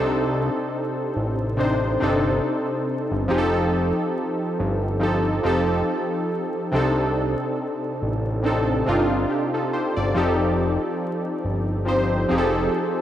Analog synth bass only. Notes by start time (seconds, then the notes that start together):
Already playing: C2
1.16 A1
2.02 G1
3.12 G1
3.31 F1
4.59 G1
5.45 F1
6.74 C2
8.02 A1
8.88 G1
9.97 G1
10.16 F1
11.45 G1
12.31 F1